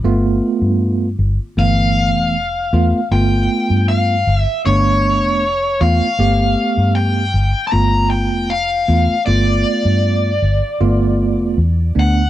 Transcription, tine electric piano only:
X:1
M:4/4
L:1/8
Q:1/4=78
K:Gmix
V:1 name="Tine electric piano"
[A,B,F]3 z [E,A,B,]2 z [A,B,F] | [A,B,F]3 z [A,B,D]2 z [A,B,F] | [A,B,G]3 z [A,B,F]2 z [A,B,F] | [A,B,F]3 z [A,B,F]2 z [A,B,D] |]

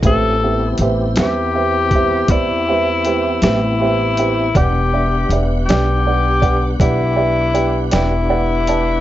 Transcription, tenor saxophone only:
X:1
M:12/8
L:1/8
Q:3/8=53
K:Em
V:1 name="Tenor saxophone"
A2 z G3 E3 E3 | G2 z G3 E3 E3 |]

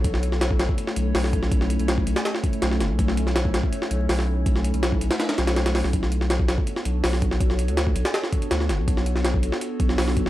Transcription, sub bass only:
X:1
M:4/4
L:1/16
Q:1/4=163
K:Amix
V:1 name="Sub bass" clef=bass
B,,,6- B,,, z3 B,,,2 B,,,4 | B,,,3 B,,,3 B,,, z4 z B,,,2 F,,, B,,,- | B,,,6- B,,, z3 B,,,2 B,,,4 | B,,,3 B,,,3 B,,, z3 B,,,4- B,,, B,,,- |
B,,,6- B,,, z3 B,,,2 B,,,4 | B,,,3 D,,3 B,,, z4 z D,,2 F,,, B,,,- | B,,,6- B,,, z3 B,,,2 B,,,4 |]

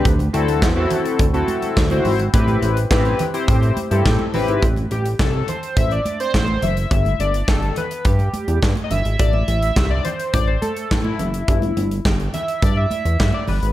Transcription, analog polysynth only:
X:1
M:4/4
L:1/16
Q:1/4=105
K:Ador
V:1 name="Analog polysynth"
z2 [CEFA]2 z [CEFA]3 z [CEFA]3 z [CEFc]2 z | [CEGB]3 z [CEGB]2 z [CEGc]3 z [CEGA]2 z [CEGB]2 | z2 G2 A2 c2 e d2 c3 e2- | e2 d2 A2 B2 G4 z3/2 ^d/2 e2 |
d e e3 d c2 d c A3 E3- | E3 z3 e2 d e e3 d B2 |]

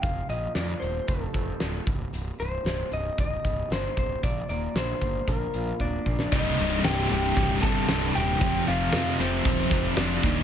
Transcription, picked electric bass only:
X:1
M:4/4
L:1/8
Q:1/4=115
K:Cdor
V:1 name="Picked electric bass" clef=bass
F,,, B,,, F,, E,,, F,,, F,,, D,,, C,,, | C,,, C,,, C,,, C,,, C,,, C,,, G,,, C,,, | B,,, E,,, B,,, G,,, B,,, B,,, D,,, B,,, | C,,, C,,, C,,, C,,, C,,, G,,, C,,, E,,, |
F,,, F,,, F,, F,,, E,,, F,,, F,,, E,,, |]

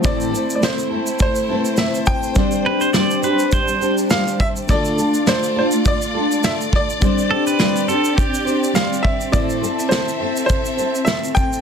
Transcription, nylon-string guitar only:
X:1
M:4/4
L:1/8
Q:"Swing 16ths" 1/4=103
K:Am
V:1 name="Nylon-string guitar"
[A,,E,A,CEA] [A,CEA] [A,CEA] [A,CEA]2 [A,CEA] [A,CEA]2 | [G,DGc] [DGc] [G,DGc] [DGc]2 [DGc] [G,DGc]2 | [D,A,DFA] [DFA] [A,DFA] [DFA]2 [DFA] [A,DFA]2 | [G,DGc] [DGc] [G,DGc] [DGc]2 [DGc] [G,DGc]2 |
[A,,E,A,CAc] [A,CAc] [A,CAc] [A,CAc]2 [A,CAc] [A,CAc]2 |]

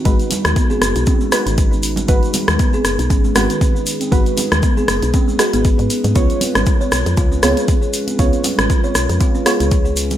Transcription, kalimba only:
X:1
M:4/4
L:1/16
Q:"Swing 16ths" 1/4=118
K:G#dor
V:1 name="Kalimba"
G, z2 G, B, G z2 C G, D D, z4 | G, z2 G, B, G z2 C G, D D, z4 | G, z2 G, B, G z2 C G, G B, z4 | C z2 C E c z2 E C G G, z4 |
C z2 C E c z2 E C G G, z4 |]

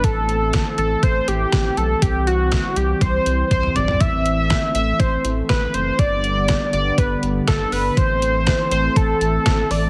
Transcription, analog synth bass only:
X:1
M:4/4
L:1/16
Q:1/4=121
K:Ador
V:1 name="Analog synth bass" clef=bass
A,,,4- A,,, z A,,,2 A,,,2 A,,,2 A,,,2 B,,,2 | C,,4- C,, z C,,2 C,,2 C,,2 C,,2 G,,,2 | A,,,4- A,,, z A,,,2 A,,,2 A,,,2 A,,,2 F,,,2 | G,,,4- G,,, z G,,,2 G,,,2 G,,,2 G,,,2 G,,,2 |
A,,,4- A,,, z A,,,2 A,,,2 A,,,2 A,,,2 A,,,2 |]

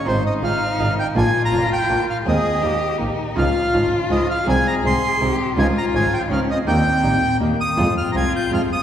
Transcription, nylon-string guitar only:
X:1
M:3/4
L:1/16
Q:1/4=164
K:Ebmix
V:1 name="Nylon-string guitar"
[C,E,A,CF] z3 [C,E,A,CF]2 z2 [C,E,A,CF]2 z2 | [=D,B,=DF] z3 [D,B,DF]2 z2 [D,B,DF]2 z2 | [E,A,C] z3 [E,B,EG]2 z2 [E,B,EG]2 z2 | [D,F,A,EF] z3 [D,F,A,EF]2 z2 [D,F,A,EF]2 z2 |
[C,E,A,CA] z3 [C,E,A,CA]2 z2 [C,E,A,CA]2 z2 | [D,F,A,EF] z3 [D,F,A,EF]2 z2 [D,F,A,EF]2 z2 | [E,B,EG] z3 [E,B,EG]2 z2 [E,B,EG]2 z2 | [K:Fm] [C,F,A,CF] z3 [C,F,A,CF]2 z2 [C,F,A,CF]2 z2 |]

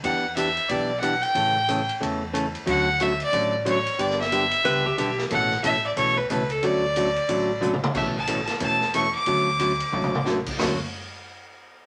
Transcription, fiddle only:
X:1
M:4/4
L:1/8
Q:"Swing" 1/4=182
K:D
V:1 name="Fiddle"
f2 e2 d2 f g- | g3 z4 z | f2 e d2 z c2 | d e6 z |
f2 e d c B B A | d6 z2 | e a2 z a2 c' d'- | d'6 z2 |
z8 |]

